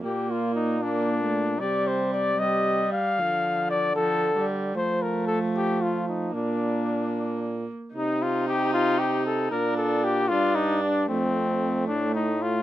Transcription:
<<
  \new Staff \with { instrumentName = "Cornet" } { \time 6/8 \key c \dorian \tempo 4. = 76 g'8 f'8 ees'8 d'4. | d''8 c''8 d''8 ees''4 f''8~ | f''4 d''8 a'4 r8 | c''8 bes'8 a'8 g'8 f'8 ees'8 |
d'2~ d'8 r8 | ees'8 f'8 g'8 f'8 g'8 a'8 | bes'8 a'8 g'8 f'8 ees'8 d'8 | c'4. d'8 ees'8 f'8 | }
  \new Staff \with { instrumentName = "Viola" } { \time 6/8 \key c \dorian bes4. bes8. a8. | g4. g4. | f4. f8. g8. | a2. |
bes2~ bes8 r8 | ees'2. | d'4. d'4. | a2. | }
  \new Staff \with { instrumentName = "Trombone" } { \clef bass \time 6/8 \key c \dorian bes,2. | c2~ c8 r8 | d2. | f2. |
bes,2~ bes,8 r8 | c2. | bes,4. g,4. | f,4. a,4. | }
>>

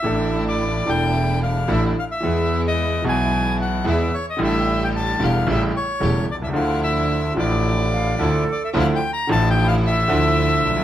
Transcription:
<<
  \new Staff \with { instrumentName = "Bandoneon" } { \time 4/4 \key d \minor \tempo 4 = 111 e''8. d''8. g''4 f''8 e''8 f''16 e''16~ | e''8. ees''8. gis''4 fis''8 e''8 cis''16 ees''16 | e''8. g''16 a''8 f''8 e''8 cis''4 d''16 e''16 | f''8 e''4 d''2 d''16 e''16 |
\tuplet 3/2 { f''8 g''8 bes''8 a''8 g''8 f''8 } e''2 | }
  \new Staff \with { instrumentName = "Flute" } { \time 4/4 \key d \minor r1 | r1 | r1 | r2 r8 f''8 a'4 |
r1 | }
  \new Staff \with { instrumentName = "String section" } { \time 4/4 \key d \minor <a d' e'>4. <a d' e'>4. <a d' e'>8 r8 | <gis b e'>4. <gis b e'>4. <gis b e'>8 r8 | <a d' g'>4. <a d' g'>8 <a cis' g'>8 r8 <a cis' g'>8 r8 | <f d' e'>4. <f d' e'>4. <f d' e'>8 r8 |
<f d' e'>8 r8 <f d' e'>4. <f d' e'>4. | }
  \new Staff \with { instrumentName = "Grand piano" } { \clef bass \time 4/4 \key d \minor << { <a,, a, e a d' a'>4. <e,, e, e a d' a'>4. <a,, a, e a d' a'>8 r8 | <e, e gis b gis'>4. <b,, b, e gis b gis'>4. <e, e gis b gis'>8 r8 | <a,, a, d g a e'>4. <e,, e, d g a e'>8 <a,, a, cis g a e'>8 r8 <e,, e, cis g a e'>8 r8 | <d, d f a e'>4. <a,, a, d f a e'>4. <d, d f a e'>8 r8 |
<d, d f a e'>8 r8 <a,, a, d f a e'>4. <d, d f a e'>4. | } \\ { r1 | r1 | r2. r8 r32 b,,32 c,32 cis,32 | r1 |
r2. r8 r32 bes,,32 b,,32 r32 | } >> }
  \new Staff \with { instrumentName = "Double bass" } { \clef bass \time 4/4 \key d \minor a,,4. e,,4. a,,8 r8 | e,4. b,,4. e,8 r8 | a,,4. e,,8 a,,8 r8 e,,8 c,8 | d,4. a,,4. d,8 r8 |
d,8 r8 a,,4. d,4 b,,8 | }
>>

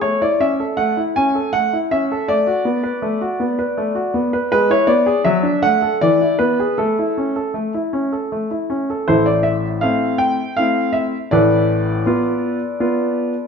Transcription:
\new Staff \with { instrumentName = "Grand piano" } { \time 3/4 \key a \major \tempo 4 = 80 << { cis''16 d''16 e''8 fis''8 gis''8 fis''8 e''8 | d''2. | b'16 cis''16 d''8 e''8 fis''8 d''8 b'8 | a'2~ a'8 r8 |
\key a \minor <e' a' c''>16 d''16 e''8 f''8 g''8 f''8 e''8 | <a' b' d''>2. | } \\ { a16 e'16 cis'16 a'16 a16 e'16 cis'16 a'16 a16 e'16 cis'16 a'16 | a16 fis'16 b16 b'16 a16 fis'16 b16 b'16 a16 fis'16 b16 b'16 | gis16 e'16 b16 gis'16 fis16 d'16 a16 a'16 e16 e'16 b16 gis'16 | a16 e'16 cis'16 a'16 a16 e'16 cis'16 a'16 a16 e'16 cis'16 a'16 |
<a,, a,>4 <a c' e'>4 <a c' e'>4 | <a,, a,>4 <b f'>4 <b f'>4 | } >> }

